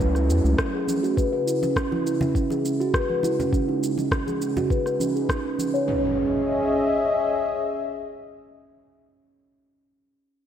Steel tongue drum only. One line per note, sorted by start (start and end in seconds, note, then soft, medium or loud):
0.00 0.14 C#4 medium
0.15 0.28 E4 medium
0.29 0.43 E4 medium
0.44 0.57 C#4 medium
0.74 0.86 G#4 medium
0.88 1.02 C#4 medium
1.03 1.11 F#4 medium
1.17 1.31 B4 medium
1.33 1.46 B4 medium
1.47 1.61 E4 medium
1.62 1.75 C#4 medium
1.92 2.05 E4 medium
2.06 2.19 E4 medium
2.21 2.34 C#4 medium
2.36 2.44 C#4 medium
2.51 2.63 G#4 medium
2.65 2.78 C#4 medium
2.80 2.88 F#4 medium
2.94 3.09 B4 medium
3.10 3.23 B4 medium
3.23 3.38 E4 medium
3.39 3.51 C#4 medium
3.53 3.67 C#4 loud
3.68 3.81 D#4 medium
3.83 3.96 D#4 medium
3.98 4.10 C#4 medium
4.12 4.20 C#4 medium
4.27 4.39 G#4 medium
4.41 4.55 C#4 medium
4.57 4.64 F#4 medium
4.71 4.85 B4 medium
4.86 4.99 B4 medium
5.00 5.14 C#4 medium
5.16 5.29 G#4 medium
5.45 5.57 C#4 medium
5.59 5.73 C#4 medium
5.74 5.86 C#5 medium
5.88 6.15 C#4 medium